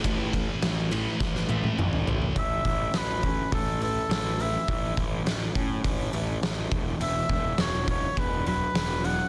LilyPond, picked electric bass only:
\new Staff \with { instrumentName = "Picked electric bass" } { \clef bass \time 4/4 \key a \major \tempo 4 = 103 a,,4 a,,4 a,,4 a,,4 | a,,8 a,,8 a,,4 a,,4 a,,4 | a,,8 a,,8 a,,8 a,8 a,,8 a,,8 a,,8 e,,8 | e,,8 e,,8 e,,4 e,,4 e,,4 | }